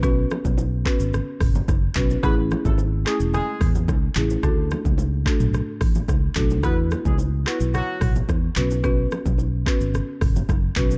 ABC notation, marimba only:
X:1
M:4/4
L:1/8
Q:1/4=109
K:Bdor
V:1 name="Marimba"
[B,CFB]2 z [B,CFB] z3 [B,CFB] | [A,CEG]2 z [A,CEG] z3 [A,CEG] | [A,DFA]2 z [A,DFA] z3 [A,DFA] | [B,EFB]2 z [B,EFB] z3 [B,CFB] |
[B,CFB]2 z [B,CFB] z3 [B,CFB] |]